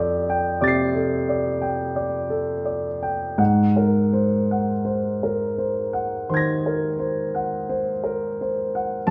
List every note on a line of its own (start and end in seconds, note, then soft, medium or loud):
0.00 0.59 F2 soft
0.00 0.94 A4 soft
0.00 0.61 D5 soft
0.00 0.30 G5 medium
0.30 0.82 G5 soft
0.61 1.15 C3 soft
0.61 1.15 D5 soft
0.61 3.35 D6 soft
0.61 3.36 A6 soft
0.68 3.38 C7 soft
0.94 1.49 A4 soft
1.29 1.83 D5 soft
1.62 2.17 G5 soft
1.96 2.52 D5 soft
2.30 2.87 A4 soft
2.65 3.24 D5 soft
3.03 3.39 G5 soft
3.38 6.25 G#2 soft
3.38 3.98 F#5 soft
3.76 4.36 A#4 soft
4.13 4.72 C5 soft
4.51 5.09 F#5 soft
4.85 5.43 C5 soft
5.23 5.80 A#4 soft
5.58 6.16 C5 soft
5.93 6.51 F#5 soft
6.29 6.87 D#3 soft
6.29 6.87 C5 soft
6.29 9.06 C6 soft
6.34 9.08 G#6 soft
6.34 9.10 A#6 soft
6.66 7.22 A#4 soft
6.99 7.56 C5 soft
7.35 7.91 F#5 soft
7.69 8.27 C5 soft
8.04 8.62 A#4 soft
8.41 8.97 C5 soft
8.75 9.09 F#5 soft
9.07 9.10 G2 medium
9.07 9.10 A5 medium